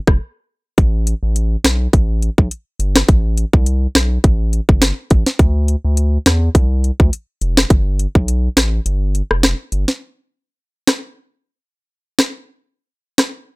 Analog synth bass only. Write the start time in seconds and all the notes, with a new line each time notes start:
0.07 F1
0.78 A1
1.23 A1
1.64 B1
1.93 A1
2.38 B1
2.79 G1
3.09 A1
3.53 C2
3.95 B1
4.24 A1
4.69 G1
5.11 A1
5.39 D2
5.85 D2
6.26 E2
6.55 C2
7.00 D2
7.41 F1
7.70 G1
8.15 B1
8.57 A1
8.86 G1
9.31 F1
9.72 G1